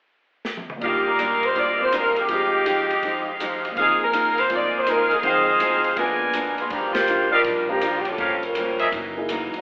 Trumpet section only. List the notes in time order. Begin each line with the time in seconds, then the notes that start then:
0.81 A#3 G4 D5 D#5 F5
1.55 G4 C5 D5
2.29 G4 D#5 F5
3.77 G#4 A#4 D#5 F5
4.38 C5 F5
5.23 C5 D#5 F5
5.97 A#4 B4 D5 G#5
6.34 A#5
6.52 B5
7.31 G4 D5 D#5 F5
8.18 G4 A#4 C#5 F5
8.79 G#4 A#4 D#5 E5